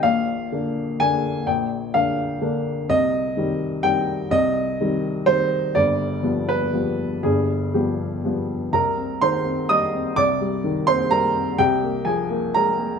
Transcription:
<<
  \new Staff \with { instrumentName = "Upright piano" } { \time 3/4 \key c \minor \tempo 4 = 125 f''2 aes''4 | g''4 f''4 r4 | ees''2 g''4 | ees''2 c''4 |
d''4. b'4. | aes'4 g'4. r8 | <bes' bes''>4 <c'' c'''>4 <ees'' ees'''>4 | <d'' d'''>4. <c'' c'''>8 <bes' bes''>4 |
<g' g''>4 <aes' aes''>4 <bes' bes''>4 | }
  \new Staff \with { instrumentName = "Upright piano" } { \clef bass \time 3/4 \key c \minor <bes,, bes,>4 <d bes d'>4 <d bes d'>4 | <bes,, bes,>4 <d bes d'>4 <d bes d'>4 | <c, c>4 <ees g c'>4 <ees g c'>4 | <c, c>4 <ees g c'>4 <ees g c'>4 |
<g,, g,>4 <f g b>4 <f g b>4 | <g,, g,>4 <f g b>4 <f g b>4 | <c, c>8 c'8 ees8 c'8 g8 c'8 | <c, c>8 g8 ees8 c'8 g8 c'8 |
<c, c>8 bes8 f8 bes8 aes8 bes8 | }
>>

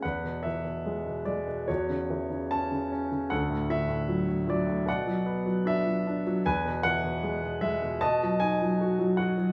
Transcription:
<<
  \new Staff \with { instrumentName = "Grand piano" } { \time 4/4 \key e \mixolydian \tempo 4 = 76 << { fis''8 e''4 d''8 cis''4 a''8. r16 | fis''8 e''4 d''8 fis''4 e''8. r16 | gis''8 fis''4 e''8 a''8 gis''4 fis''8 | } \\ { b'2 fis'2 | a'2 d''2 | b'2 dis''2 | } >> }
  \new Staff \with { instrumentName = "Grand piano" } { \clef bass \time 4/4 \key e \mixolydian e,16 b,16 e16 b,16 gis16 b,16 gis16 b,16 e,16 cis16 e16 cis16 cis'16 cis16 cis'16 cis16 | d,16 a,16 d16 a,16 fis16 a,16 fis16 a,16 b,16 fis16 b16 fis16 d'16 fis16 d'16 fis16 | e,16 b,16 e16 b,16 gis16 b,16 gis16 b,16 b,16 fis16 dis'16 fis16 fis'16 fis16 fis'16 fis16 | }
>>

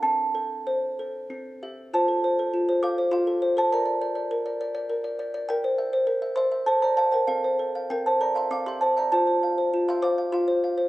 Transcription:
\new Staff \with { instrumentName = "Music box" } { \time 3/4 \key f \major \tempo 4 = 100 << { a''2~ a''8 r8 | <c'' a''>4. <f'' d'''>8 <f'' c'''>8. <c'' a''>16 | <d'' bes''>2~ <d'' bes''>8 r8 | <bes' g''>4. <e'' c'''>8 <c'' a''>16 <d'' bes''>16 <c'' a''>16 <bes' g''>16 |
<a' f''>4 <bes' g''>16 <c'' a''>16 <d'' bes''>16 <e'' c'''>16 <f'' d'''>16 <e'' c'''>16 <c'' a''>16 <d'' bes''>16 | <c'' a''>4~ <c'' a''>16 <e'' c'''>16 <f'' d'''>8 <f'' c'''>4 | } \\ { c'8 a'8 c''8 a'8 c'8 <g' e''>8 | f'16 a'16 c''16 a'16 f'16 c''16 a'16 c''16 f'16 a'16 c''16 a'16 | bes'16 d''16 d''16 d''16 bes'16 d''16 d''16 d''16 bes'16 d''16 d''16 d''16 | r16 c''16 e''16 c''16 bes'16 e''16 c''16 e''16 a'16 c''16 f''16 c''16 |
c'16 c''16 a'16 f''16 c'8 a'16 f''16 c'16 g'8 e''16 | f'16 c''16 f''16 c''16 f'16 f''16 c''16 f''16 f'16 c''16 f''16 c''16 | } >> }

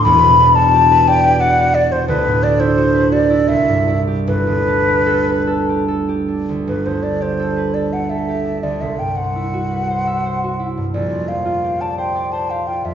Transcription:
<<
  \new Staff \with { instrumentName = "Flute" } { \time 3/4 \key g \major \tempo 4 = 84 b''8. a''8. g''8 fis''8 d''16 c''16 | b'8 d''16 c''8. d''8 e''8. r16 | b'2 r4 | b'16 c''16 d''16 c''8. d''16 fis''16 e''8. d''16 |
e''16 g''16 fis''2~ fis''8 | d''8 f''8. a''16 g''8 a''16 f''16 g''16 e''16 | }
  \new Staff \with { instrumentName = "Harp" } { \time 3/4 \key g \major <e,, e, e' b' e''>16 b,16 d'16 fis'16 g'16 b'16 d''16 b'16 d''16 g'16 fis'16 b,16 | d,16 a,16 d'16 e'16 fis'16 b'16 fis'16 e'16 c,16 g,16 e'16 g'16 | g,,16 d,16 d'16 g'16 a'16 b'16 a'16 g'16 a'16 g'16 d'16 d,16 | g,,16 d,16 d'16 g'16 a'16 b'16 a'16 g'16 a'16 g'16 d'16 d,16 |
c,16 g,16 c'16 e'16 fis'16 b'16 c''16 e''16 c''16 fis'16 e'16 g,16 | bes,,16 f,16 c'16 f'16 g'16 d''16 c''16 d''16 c''16 g'16 f'16 f,16 | }
>>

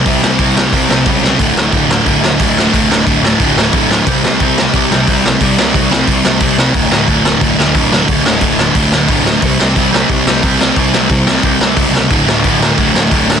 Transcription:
<<
  \new Staff \with { instrumentName = "Distorted electric guitar" } { \clef bass \time 4/4 \key c \lydian \tempo 4 = 179 <c g c'>8 <c g c'>8 <c g c'>8 <c g c'>8 <c g c'>8 <c g c'>8 <c g c'>8 <c g c'>8 | <d, a, d>8 <d, a, d>8 <d, a, d>8 <d, a, d>8 <d, a, d>8 <d, a, d>8 <d, a, d>8 <d, a, d>8 | <d, a, d>8 <d, a, d>8 <d, a, d>8 <d, a, d>8 <d, a, d>8 <d, a, d>8 <d, a, d>8 <d, a, d>8 | <c g c'>8 <c g c'>8 <c g c'>8 <c g c'>8 <c g c'>8 <c g c'>8 <c g c'>8 <c g c'>8 |
<c g c'>8 <c g c'>8 <c g c'>8 <c g c'>8 <c g c'>8 <c g c'>8 <c g c'>8 <c g c'>8 | <d, a, d>8 <d, a, d>8 <d, a, d>8 <d, a, d>8 <d, a, d>8 <d, a, d>8 <d, a, d>8 <d, a, d>8 | <d, a, d>8 <d, a, d>8 <d, a, d>8 <d, a, d>8 <d, a, d>8 <d, a, d>8 <d, a, d>8 <d, a, d>8 | <c g c'>8 <c g c'>8 <c g c'>8 <c g c'>8 <c g c'>8 <c g c'>8 <c g c'>8 <c g c'>8 |
<c g c'>8 <c g c'>8 <c g c'>8 <c g c'>8 <c g c'>8 <c g c'>8 <c g c'>8 <c g c'>8 | <d, a, d>8 <d, a, d>8 <d, a, d>8 <d, a, d>8 <d, a, d>8 <d, a, d>8 <d, a, d>8 <d, a, d>8 | }
  \new Staff \with { instrumentName = "Picked electric bass" } { \clef bass \time 4/4 \key c \lydian c,8 c,8 c,4 c,8 c,8 cis,4 | d,,8 d,,8 d,,4 d,,8 d,,8 d,,4 | d,,8 d,,8 d,,4 d,,8 d,,8 d,,4 | c,8 c,8 c,4 c,8 c,8 c,4 |
c,8 c,8 c,4 c,8 c,8 c,4 | d,,8 d,,8 d,,4 d,,8 d,,8 d,,4 | d,,8 d,,8 d,,4 d,,8 d,,8 d,,4 | c,8 c,8 c,4 c,8 c,8 c,4 |
c,8 c,8 c,4 c,8 c,8 cis,4 | d,,8 d,,8 d,,4 d,,8 d,,8 d,,4 | }
  \new DrumStaff \with { instrumentName = "Drums" } \drummode { \time 4/4 <hho bd>8 sn8 <hho bd>8 sn8 <hho bd>8 sn8 <hho bd>8 sn8 | <hho bd>8 sn8 <hho bd>8 sn8 <hho bd>8 sn8 <hho bd>8 sn8 | <hho bd>8 sn8 <hho bd>8 sn8 <hho bd>8 sn8 <hho bd>8 sn8 | <hho bd>8 sn8 <hho bd>8 sn8 <hho bd>8 sn8 <hho bd>8 sn8 |
<hho bd>8 sn8 <hho bd>8 sn8 <hho bd>8 sn8 <hho bd>8 sn8 | <hho bd>8 sn8 <hho bd>8 sn8 <hho bd>8 sn8 <hho bd>8 sn8 | <hho bd>8 sn8 <hho bd>8 sn8 <hho bd>8 sn8 <hho bd>8 sn8 | <hho bd>8 sn8 <hho bd>8 sn8 <hho bd>8 sn8 <hho bd>8 sn8 |
<hho bd>8 sn8 <hho bd>8 sn8 <hho bd>8 sn8 <hho bd>8 sn8 | <hho bd>8 sn8 <hho bd>8 sn8 <hho bd>8 sn8 <hho bd>8 sn8 | }
>>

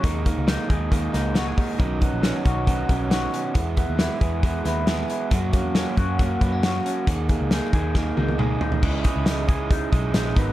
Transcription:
<<
  \new Staff \with { instrumentName = "Clean electric guitar" } { \time 4/4 \key cis \dorian \tempo 4 = 136 dis8 ais8 dis'8 gis'8 ais8 dis'8 fis'16 gis'16 dis'8 | dis8 b8 cis'8 fis'8 b8 cis'8 fis'8 cis'8 | r8 b8 e'8 gis'8 b8 e'8 gis'8 e'8 | fis8 ais8 cis'8 fis'8 ais8 b16 cis'16 fis'8 cis'8 |
dis8 ais8 dis'8 gis'8 ais8 dis'8 gis'8 dis'8 | e8 gis8 dis'8 gis'8 dis'8 gis8 dis'8 b8 | }
  \new Staff \with { instrumentName = "Overdriven electric guitar" } { \time 4/4 \key cis \dorian <dis gis ais dis'>8 <gis ais dis'>8 <dis gis ais dis'>8 <gis ais dis'>8 <dis gis ais dis'>8 <gis ais dis'>8 <dis gis ais dis'>4 | <b, dis fis cis' dis'>8 <fis cis' dis'>8 <b, dis fis cis' dis'>8 <fis cis' dis'>8 <dis fis cis' dis'>8 <fis cis' dis'>8 <b, dis fis cis' dis'>4 | <e gis b e'>8 <gis b e'>8 <e gis b e'>8 <gis b e'>8 <e gis b e'>8 <gis b e'>8 <e gis b e'>4 | <fis ais cis' fis'>8 <ais cis' fis'>8 <fis ais cis' fis'>8 <ais cis' fis'>8 <fis ais cis' fis'>8 <ais cis' fis'>8 <fis ais cis' fis'>4 |
<dis ais dis' gis'>8 <ais dis' gis'>8 <dis ais dis' gis'>8 <ais dis' gis'>8 <dis ais dis' gis'>8 <ais dis' gis'>8 <dis ais dis' gis'>4 | <cis gis cis' e' gis' dis''>8 <cis' e' gis' dis''>8 <cis' e' gis' dis''>8 <cis' e' gis' dis''>4 <cis' e' gis' dis''>8 <cis' e' gis' dis''>8 <gis b dis' ais'>8 | }
  \new Staff \with { instrumentName = "Picked electric bass" } { \clef bass \time 4/4 \key cis \dorian dis,8. cis,8 r16 dis,4 cis,4 r8 | b,,8. ais,,8 r16 b,,4 b,,4 r8 | e,8. dis,8 r16 e,4 dis,4 r8 | fis,8. e,8 r16 fis,4 fis,4 r8 |
dis,8. cis,8 r16 dis,4 cis,4 r8 | cis,8 r16 cis,4.~ cis,16 b,,8 ais,,8 gis,,8 | }
  \new DrumStaff \with { instrumentName = "Drums" } \drummode { \time 4/4 <hh bd>8 <hh bd>8 <hh sn>8 <hh bd>8 <hh bd>8 <hh sn>8 <hh sn>8 <hho bd>8 | <hh bd>8 <hh bd>8 <hh sn>8 <hh bd>8 <hh bd>8 <hh bd>8 <hh sn>8 hh8 | <hh bd>8 <hh bd>8 <hh sn>8 <hh bd>8 <hh bd>8 <hh sn>8 <hh sn>8 hh8 | <hh bd>8 <hh bd>8 <hh sn>8 <hh bd>8 <hh bd>8 <hh bd>8 <hh sn>8 hh8 |
<hh bd>8 <hh bd>8 <hh sn>8 <hh bd>8 <bd sn>8 tommh16 tommh16 toml8 tomfh16 tomfh16 | <cymc bd>8 <hh bd>8 <hh sn>8 <hh bd>8 <hh bd>8 <hh bd>8 <hh sn>8 <hh bd>8 | }
>>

